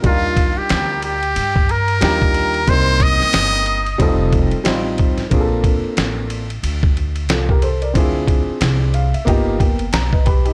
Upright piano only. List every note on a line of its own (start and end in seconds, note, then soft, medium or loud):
0.02 1.13 G3 medium
0.02 1.14 D4 medium
0.02 1.14 D#4 medium
0.02 1.15 F4 medium
0.02 1.15 A#4 medium
2.00 2.58 G3 medium
2.00 2.58 D4 medium
2.00 2.58 D#4 medium
2.00 2.59 F4 medium
2.00 2.60 G4 medium
2.67 3.77 G3 medium
2.67 3.78 A#3 medium
2.67 3.78 C4 medium
2.67 3.79 D#4 medium
2.67 3.79 A#4 medium
3.98 4.55 G3 medium
3.98 4.56 C4 medium
3.98 4.56 D#4 medium
3.98 4.57 F4 medium
3.98 4.57 A4 loud
4.64 5.21 G3 medium
4.64 5.22 C4 medium
4.64 5.22 D#4 medium
4.64 5.23 F4 medium
4.64 5.23 C5 medium
5.30 6.41 A#3 medium
5.30 6.41 C4 medium
5.30 6.42 D4 medium
5.30 6.42 F4 medium
5.30 5.40 G#4 medium
5.40 6.46 A4 medium
7.30 7.48 F4 medium
7.30 7.48 A4 medium
7.49 7.62 G4 medium
7.49 7.62 A#4 medium
7.63 7.81 A4 medium
7.63 7.81 C5 medium
7.82 8.13 A#4 soft
7.82 8.13 D5 medium
7.93 9.05 C4 medium
7.93 9.05 D4 medium
7.93 9.06 E4 medium
7.93 9.06 F4 medium
7.93 9.06 G#4 medium
8.94 9.12 F5 medium
9.14 9.26 E5 medium
9.25 9.82 A#3 medium
9.25 9.83 B3 medium
9.25 9.60 D#4 medium
9.25 9.60 F4 medium
9.25 9.61 G4 loud
9.25 9.58 D#5 medium
9.59 9.90 G5 medium
9.93 10.24 A#5 medium
10.13 10.24 B4 medium
10.13 10.25 D#5 medium
10.26 10.44 G4 medium
10.26 10.44 B4 medium
10.26 10.53 B5 medium
10.45 10.53 D#4 medium
10.45 10.53 G4 medium